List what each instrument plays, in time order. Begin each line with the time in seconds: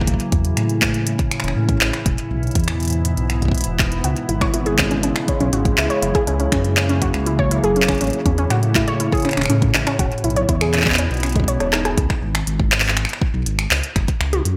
Already playing: ambient pad C#3 E3
0.01 kick
0.07 detuned saw bass A1, ambient pad A2 C#4 E4, kick, closed hi-hat
0.14 kick
0.20 closed hi-hat
0.32 detuned saw bass E2, kick, closed hi-hat
0.45 closed hi-hat
0.57 detuned saw bass A2, finger snap, closed hi-hat
0.69 closed hi-hat
0.82 kick, clap, closed hi-hat
0.94 closed hi-hat
1.07 closed hi-hat
1.19 kick, closed hi-hat
1.31 finger snap, closed hi-hat
1.40 finger snap
1.44 detuned saw bass E1, closed hi-hat
1.48 finger snap
1.56 detuned saw bass A2
1.69 kick, closed hi-hat
1.81 detuned saw bass A1, clap, closed hi-hat
1.93 finger snap, closed hi-hat
2.06 detuned saw bass E1, ambient pad G#2 B2 B3, kick, closed hi-hat
2.18 closed hi-hat
2.31 detuned saw bass B1
2.43 closed hi-hat
2.47 closed hi-hat
2.51 closed hi-hat
2.55 detuned saw bass E2, kick, closed hi-hat
2.60 closed hi-hat
2.64 closed hi-hat
2.68 finger snap, closed hi-hat
2.80 closed hi-hat
2.83 closed hi-hat
2.85 closed hi-hat
2.88 closed hi-hat
2.90 closed hi-hat
2.93 closed hi-hat
3.05 closed hi-hat
3.17 detuned saw bass B1, closed hi-hat
3.30 finger snap, closed hi-hat
3.42 kick, closed hi-hat
3.45 kick
3.48 kick
3.51 kick, closed hi-hat
3.58 closed hi-hat
3.61 closed hi-hat
3.64 detuned saw bass E1, closed hi-hat
3.79 kick, clap, closed hi-hat
3.92 closed hi-hat
4.04 detuned saw bass C#2, ambient pad C#3 G#3, synth arpeggio sound F#4, closed hi-hat
4.16 closed hi-hat
4.29 detuned saw bass G#1, synth arpeggio sound E4, closed hi-hat
4.41 synth arpeggio sound C#5, finger snap, kick, closed hi-hat
4.54 detuned saw bass G#1, synth arpeggio sound E4, closed hi-hat
4.66 synth arpeggio sound G#4, closed hi-hat
4.78 synth arpeggio sound C#4, kick, clap, closed hi-hat
4.91 synth arpeggio sound C#4, closed hi-hat
5.03 synth arpeggio sound C#4, closed hi-hat
5.16 finger snap, closed hi-hat
5.28 synth arpeggio sound C#4, kick, closed hi-hat
5.40 detuned saw bass B1, synth arpeggio sound C#4, closed hi-hat
5.53 detuned saw bass G#1, synth arpeggio sound F#4, closed hi-hat
5.65 kick, closed hi-hat
5.78 detuned saw bass C#2, synth arpeggio sound E4, finger snap, clap, closed hi-hat
5.90 synth arpeggio sound C#5, closed hi-hat
6.02 detuned saw bass F#1, ambient pad C#3 F#3 A#3, synth arpeggio sound E4, closed hi-hat
6.15 synth arpeggio sound G#4, kick, closed hi-hat
6.27 detuned saw bass C#2, synth arpeggio sound C#4, closed hi-hat
6.40 synth arpeggio sound C#4, closed hi-hat
6.52 detuned saw bass F#2, synth arpeggio sound C#4, finger snap, kick, closed hi-hat
6.64 closed hi-hat
6.77 synth arpeggio sound C#4, clap, closed hi-hat
6.89 synth arpeggio sound C#4, closed hi-hat
7.02 synth arpeggio sound F#4, kick, closed hi-hat
7.14 detuned saw bass C#2, finger snap, closed hi-hat
7.26 synth arpeggio sound E4, closed hi-hat
7.39 synth arpeggio sound C#5, kick
7.51 synth arpeggio sound E4, closed hi-hat
7.64 detuned saw bass F#1, synth arpeggio sound G#4, closed hi-hat
7.76 synth arpeggio sound C#4, closed hi-hat
7.82 clap
7.88 synth arpeggio sound C#4, finger snap, kick, closed hi-hat
7.92 closed hi-hat
7.95 closed hi-hat
7.98 ambient pad A2 C#4, closed hi-hat
8.01 detuned saw bass A1, synth arpeggio sound C#4, closed hi-hat
8.07 closed hi-hat
8.10 closed hi-hat
8.13 closed hi-hat
8.26 detuned saw bass E2, synth arpeggio sound C#4, kick, closed hi-hat
8.38 synth arpeggio sound C#4, closed hi-hat
8.50 detuned saw bass A2, synth arpeggio sound F#4, finger snap, closed hi-hat
8.63 closed hi-hat
8.75 synth arpeggio sound E4, kick, clap, closed hi-hat
8.88 synth arpeggio sound C#5, closed hi-hat
9.00 synth arpeggio sound E4, closed hi-hat
9.12 synth arpeggio sound G#4, kick, closed hi-hat
9.15 closed hi-hat
9.17 closed hi-hat
9.20 closed hi-hat
9.22 finger snap, closed hi-hat
9.25 synth arpeggio sound C#4, closed hi-hat
9.29 finger snap, closed hi-hat
9.33 finger snap
9.37 detuned saw bass E1, synth arpeggio sound C#4, finger snap, closed hi-hat
9.41 finger snap, closed hi-hat
9.46 finger snap
9.50 detuned saw bass A2, synth arpeggio sound C#4, closed hi-hat
9.62 kick, closed hi-hat
9.74 detuned saw bass A1, synth arpeggio sound C#4, clap, closed hi-hat
9.87 synth arpeggio sound C#4, finger snap, closed hi-hat
9.99 detuned saw bass E1, ambient pad G#2 B2 E3 B3 E4, synth arpeggio sound F#4, kick, closed hi-hat
10.12 closed hi-hat
10.18 closed hi-hat
10.24 detuned saw bass B1, synth arpeggio sound E4, closed hi-hat
10.30 closed hi-hat
10.36 synth arpeggio sound C#5, closed hi-hat
10.49 detuned saw bass E2, synth arpeggio sound E4, kick, closed hi-hat
10.61 synth arpeggio sound G#4, finger snap, closed hi-hat
10.74 synth arpeggio sound C#4, clap, closed hi-hat
10.78 clap
10.82 clap
10.86 synth arpeggio sound C#4, kick, clap, closed hi-hat
10.90 clap, closed hi-hat
10.94 clap, closed hi-hat
10.98 synth arpeggio sound C#4, closed hi-hat
11.11 detuned saw bass B1, closed hi-hat
11.14 closed hi-hat
11.17 closed hi-hat
11.20 finger snap, closed hi-hat
11.23 synth arpeggio sound C#4, closed hi-hat
11.26 closed hi-hat
11.29 closed hi-hat
11.32 closed hi-hat
11.36 synth arpeggio sound G#3, kick, closed hi-hat
11.40 kick
11.44 kick
11.48 synth arpeggio sound C#5, closed hi-hat
11.60 detuned saw bass E1, synth arpeggio sound C#5, cross-stick, closed hi-hat
11.73 synth arpeggio sound D#4, cross-stick, clap, closed hi-hat
11.85 synth arpeggio sound G#4, cross-stick, closed hi-hat
11.98 detuned saw bass C#2, kick, closed hi-hat
12.10 finger snap, kick
12.22 detuned saw bass G#1
12.35 finger snap, closed hi-hat
12.47 detuned saw bass G#1, closed hi-hat
12.60 kick
12.72 finger snap, clap
12.80 clap
12.84 open hi-hat
12.88 clap
12.97 finger snap, closed hi-hat
13.05 finger snap
13.09 closed hi-hat
13.13 finger snap
13.22 kick
13.34 detuned saw bass B1
13.46 detuned saw bass G#1, closed hi-hat
13.59 finger snap, closed hi-hat
13.71 detuned saw bass C#2, clap, open hi-hat
13.83 closed hi-hat
13.96 detuned saw bass F#1, finger snap, kick, closed hi-hat
14.08 kick, closed hi-hat
14.21 detuned saw bass C#2, finger snap
14.33 closed hi-hat, high tom
14.45 detuned saw bass F#2, closed hi-hat